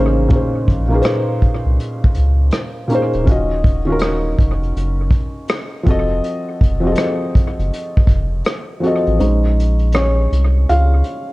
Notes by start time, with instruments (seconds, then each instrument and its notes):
Already playing: sub bass A1, felt piano C#3 A#3 C#4 D#4 G#4
0.00 felt piano C5
0.29 felt piano A#2 A#3 C#4, kick, closed hi-hat
0.33 felt piano D#4 G#4 C5
0.68 sub bass A#1, kick, closed hi-hat
0.88 felt piano A#2 A#3 C#4
0.92 felt piano D#4 G#4 B4
1.02 felt piano C5, cross-stick, closed hi-hat
1.42 kick, closed hi-hat
1.66 sub bass C2
1.80 closed hi-hat
2.04 kick
2.14 sub bass C#2, closed hi-hat
2.51 cross-stick, closed hi-hat
2.88 felt piano A#2 A#3 C#4, closed hi-hat
2.92 felt piano D#4 G#4 C5
3.13 sub bass D1, closed hi-hat
3.24 sub bass D#1, felt piano D#3 C#4, kick, closed hi-hat
3.28 felt piano F4 F#4 D#5
3.64 kick, closed hi-hat
3.85 felt piano D#3 C#4 F4
3.90 felt piano F#4 A#4
3.99 cross-stick, closed hi-hat
4.39 sub bass F1, kick, closed hi-hat
4.63 closed hi-hat
4.76 sub bass F#1, closed hi-hat
5.11 kick, closed hi-hat
5.48 cross-stick, closed hi-hat
5.83 sub bass F1, felt piano F3 C4 F#4, kick, closed hi-hat
5.89 felt piano A4 D#5
6.24 closed hi-hat
6.61 sub bass F1, kick, closed hi-hat
6.80 felt piano F3 C4 F#4
6.85 felt piano G#4 D#5
6.92 felt piano A4, closed hi-hat
6.98 cross-stick
7.35 kick, closed hi-hat
7.59 sub bass F#1, closed hi-hat
7.73 closed hi-hat
7.97 kick
8.07 sub bass F1, kick, closed hi-hat
8.45 cross-stick, closed hi-hat
8.80 felt piano F3 C4 F#4, closed hi-hat
8.85 felt piano A4 D#5
9.07 sub bass A1, closed hi-hat
9.19 sub bass A#1, felt piano G#3 C#4 D#4 C5, closed hi-hat
9.60 closed hi-hat
9.79 closed hi-hat
9.92 felt piano C#4 C#5, cross-stick, closed hi-hat
10.32 sub bass C2, closed hi-hat
10.69 sub bass C#2, felt piano F4 F5, closed hi-hat
11.04 closed hi-hat